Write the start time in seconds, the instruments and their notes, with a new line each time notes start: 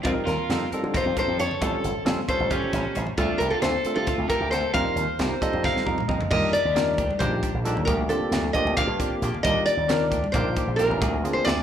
0.03 slap bass F2, tine electric piano G3 C4 D#4 F4 A#4, overdriven electric guitar C4, clean electric guitar C4 D#4 A#4, nylon-string guitar F4, kick, closed hi-hat, high conga
0.26 slap bass D#2, overdriven electric guitar F4, nylon-string guitar A#4, snare, closed hi-hat
0.38 muted slap bass stroke
0.49 slap bass F2, tine electric piano G3 C4 D#4 F4 A4, clean electric guitar C4 D#4 A#4, snare, closed hi-hat, low conga
0.72 tine electric piano G3 C4 D#4 F4 A4, clean electric guitar D#4 A#4, muted slap bass stroke, closed hi-hat
0.83 slap bass D3, high conga
0.94 clean electric guitar C4 D#4 A#4, overdriven electric guitar F4, nylon-string guitar C5, muted slap bass stroke, kick, snare, closed hi-hat, low conga
1.06 slap bass F2
1.17 clean electric guitar D#4 A#4, overdriven electric guitar A4, nylon-string guitar C5, kick, closed hi-hat
1.28 slap bass F2, low conga
1.39 slap bass F2, overdriven electric guitar A4, nylon-string guitar C#5, closed hi-hat
1.51 low conga
1.61 slap bass A1, clean electric guitar G3 C#4 F4 C5, tine electric piano G3 C4 C#4 F4 A4, kick, closed hi-hat, high conga
1.84 slap bass G1, closed hi-hat
2.05 slap bass F2, clean electric guitar G3 C#4 F4 C5, tine electric piano G3 C4 C#4 F4 A4, snare, closed hi-hat, low conga
2.28 tine electric piano G3 C#4 F4 A4 C5, clean electric guitar C#4 F4 C5, overdriven electric guitar A4, nylon-string guitar C5, muted slap bass stroke, kick, closed hi-hat
2.40 slap bass A1, high conga
2.50 clean electric guitar G3 C#4 F4 C5, overdriven electric guitar C#4, nylon-string guitar G4, kick, closed hi-hat, low conga
2.62 muted slap bass stroke, low conga
2.73 slap bass A1, clean electric guitar C#4 F4 C5, kick, snare, closed hi-hat
2.85 low conga
2.95 slap bass A1, clean electric guitar G3 C#4 F4 C5, closed hi-hat
3.07 low conga
3.17 slap bass D2, tine electric piano A3 C4 D4 F4 A4, clean electric guitar C4 F4 A4, overdriven electric guitar D4, nylon-string guitar F4, kick, closed hi-hat, high conga
3.38 slap bass C2, overdriven electric guitar G4, nylon-string guitar A#4, closed hi-hat
3.50 overdriven electric guitar F4, nylon-string guitar A4, muted slap bass stroke
3.61 slap bass D2, tine electric piano A3 C4 D4 F4 A4, clean electric guitar C4 F4 A4, overdriven electric guitar A4, nylon-string guitar C5, snare, closed hi-hat, low conga
3.84 tine electric piano A3 C4 D4 F4 A4, muted slap bass stroke, closed hi-hat
3.95 slap bass C3, overdriven electric guitar F4, nylon-string guitar A4, high conga
4.06 clean electric guitar C4 F4 A4, muted slap bass stroke, kick, snare, closed hi-hat, low conga
4.18 slap bass D2, low conga
4.28 clean electric guitar F4 A4, overdriven electric guitar G4, nylon-string guitar A#4, muted slap bass stroke, kick, closed hi-hat
4.40 slap bass D2, low conga
4.51 slap bass D2, clean electric guitar C4 F4 A4, overdriven electric guitar A4, nylon-string guitar C5, snare, closed hi-hat
4.74 slap bass F2, tine electric piano G3 C4 D#4 F4 A#4, clean electric guitar C4 D#4 A#4, overdriven electric guitar C5, nylon-string guitar F5, kick, closed hi-hat, high conga, low conga
4.96 slap bass D#2, closed hi-hat, low conga
5.19 slap bass C2, tine electric piano G3 C4 D#4 F4 G4, clean electric guitar C4 D#4 A#4, snare, closed hi-hat, low conga
5.41 tine electric piano G3 C4 D#4 F4 A4, nylon-string guitar D#5, muted slap bass stroke, kick, closed hi-hat
5.53 slap bass F2, high conga
5.64 clean electric guitar C4 D#4 A#4, nylon-string guitar F5, kick, snare, low conga
5.76 muted slap bass stroke, snare, high conga
5.86 slap bass F2, clean electric guitar D#4 A#4, tine electric piano A#5, kick, high conga
5.98 mid tom, high conga
6.08 slap bass F2, clean electric guitar C4 D#4 A#4, tine electric piano D#5, kick, low conga
6.21 floor tom, low conga
6.31 slap bass D#2, tine electric piano G3 D4 D#4 F4 A#4, clean electric guitar A#3 D4 G4, nylon-string guitar D#5, kick, crash, high conga
6.53 nylon-string guitar D5, muted slap bass stroke, closed hi-hat
6.65 slap bass D#2, low conga
6.75 tine electric piano G3 D4 D#4 F4 A#4, clean electric guitar A#3 D4 G4, snare, closed hi-hat, low conga
6.98 slap bass D2, clean electric guitar D4 G4, kick, closed hi-hat
7.10 high conga, low conga
7.19 slap bass A#1, tine electric piano G3 D4 D#4 F4 G4, clean electric guitar A#3 D4 G4, nylon-string guitar C5, kick, closed hi-hat, low conga
7.43 clean electric guitar D4 G4, kick, closed hi-hat
7.54 slap bass A#1
7.64 tine electric piano G3 D4 D#4 F4 A4, clean electric guitar A#3 D4 G4, closed hi-hat
7.76 slap bass D#2, low conga
7.85 slap bass D2, clean electric guitar F3 A#3 D4 G4, nylon-string guitar A#4, kick, closed hi-hat, high conga
8.09 slap bass D3, tine electric piano A#3 C4 D4 F4 G4, nylon-string guitar A4, closed hi-hat
8.21 muted slap bass stroke, low conga
8.31 slap bass D2, clean electric guitar F3 A#3 D4 G4, snare, closed hi-hat, low conga
8.53 tine electric piano A#3 C4 D4 F4 G4, nylon-string guitar D#5, muted slap bass stroke, kick, closed hi-hat
8.65 slap bass D2, high conga, low conga
8.77 clean electric guitar F3 A#3 D4 G4, nylon-string guitar F5, kick, closed hi-hat, low conga
8.87 slap bass G2
8.99 tine electric piano A#3 C4 D4 F4 G4, clean electric guitar A#3 D4 G4, kick, closed hi-hat
9.10 muted slap bass stroke
9.22 slap bass A#1, clean electric guitar F3 A#3 D4 G4, closed hi-hat
9.34 low conga
9.43 slap bass D#2, clean electric guitar A#3 D4 G4, tine electric piano A#3 D4 D#4 F4 G4, nylon-string guitar D#5, kick, closed hi-hat, high conga
9.66 nylon-string guitar D5, muted slap bass stroke, closed hi-hat
9.77 slap bass D#2, low conga
9.88 clean electric guitar A#3 D4 G4, tine electric piano A#3 D4 D#4 F4 A#4, snare, closed hi-hat, low conga
10.11 slap bass D2, clean electric guitar D4 G4, kick, closed hi-hat
10.24 high conga, low conga
10.32 slap bass A#1, clean electric guitar A#3 D4 G4, tine electric piano A#3 D4, nylon-string guitar C5, kick, closed hi-hat, low conga
10.36 tine electric piano D#4 F4 A#4
10.56 clean electric guitar D4 G4, kick, closed hi-hat
10.67 slap bass A#1
10.76 clean electric guitar A#3 D4 G4, tine electric piano A#3 D4 D#4 F4, nylon-string guitar A#4, snare, closed hi-hat
10.80 tine electric piano G4
10.89 slap bass A1, low conga
11.01 slap bass D2, clean electric guitar F3 C4 D4 G#4, kick, closed hi-hat, high conga
11.23 slap bass D3, tine electric piano A#3 C4 D4 F4 G#4, closed hi-hat
11.33 nylon-string guitar C5, muted slap bass stroke
11.44 slap bass D2, clean electric guitar F3 C4 D4 G#4, nylon-string guitar D5, snare, closed hi-hat, low conga
11.58 low conga